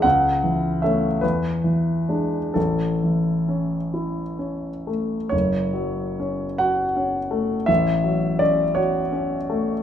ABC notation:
X:1
M:12/8
L:1/8
Q:3/8=50
K:A
V:1 name="Grand piano"
f2 e B3 A4- A z | [K:F#m] c3 f3 e2 d c3 |]
V:2 name="Grand piano"
C,, E, [A,C] E,, E, [G,D] A,,, E, C E C A, | [K:F#m] F,,, F, C F C A, A,,, F, C F C A, |]